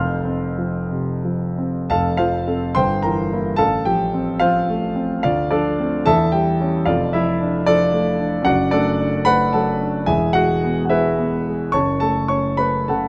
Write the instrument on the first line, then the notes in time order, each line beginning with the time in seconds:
grand piano
Already playing: F1 F2 F5 C6 F6
0.25 C4
0.58 F3
0.91 C3
1.25 F3
1.58 C4
1.90 F1 F2 A4 F5 A5
2.17 F3 F4 C5 F5
2.47 C4 A4
2.75 G1 C5 G5 C6
3.03 E3 A#4 G5 A#5
3.32 A#3 E4
3.56 A1 A4 F5 A5
3.85 F3 G4 G5
4.14 C4
4.40 F3 F4 C5 F5
4.70 A3
4.95 C4
5.23 D2 F4 D5 F5
5.51 F3 D4 A4 D5
5.79 A3 C4
6.06 E2 A4 E5 A5
6.32 G3 G4 E5 G5
6.61 G3 C#4
6.85 F1 F2 F4 D5 F5
7.13 F3 E4 E5
7.41 D4
7.66 F3 D4 A4 D5
7.93 A3
8.20 D4
8.42 F#1 F#2 F#4 F#5
8.46 D5
8.71 A3 D4 A4 D5
9.00 D4
9.25 A3 B4 F#5 B5
9.53 F#3 A4 F#5 A5
9.81 D4
10.06 E1 E2 G#4 E5 G#5
10.33 G#3 F#4 F#5
10.64 B3
10.85 F#5
10.90 G#3 E4 B4 E5
11.19 B3
11.47 G#3
11.72 F#1 F#2 C#5 A5 C#6
12.00 A3 A4 A5
12.28 C#4 C#5 C#6
12.57 A3 B4 B5
12.88 C#3 A4 F#5 A5